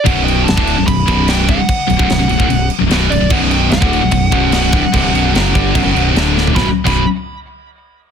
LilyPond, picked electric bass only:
\new Staff \with { instrumentName = "Picked electric bass" } { \clef bass \time 4/4 \key b \minor \tempo 4 = 148 b,,,4 b,,,16 d,,8 b,,,16 b,,,8 b,,,4 c,,16 r16 | r8 b,,,16 b,,,16 b,,,16 b,,,16 b,,,16 d,,16 b,,,8 r16 b,,,16 b,,,8 b,,,16 b,,,16 | b,,,4 b,,,16 d,,8 b,,,16 b,,,8 b,,,4 c,,16 r16 | c,,8 b,,,8 fis,,8 g,,8 b,,,16 fis,,16 b,,,8 d,,4 |
b,,,16 r8 b,,,8 r2 r8. | }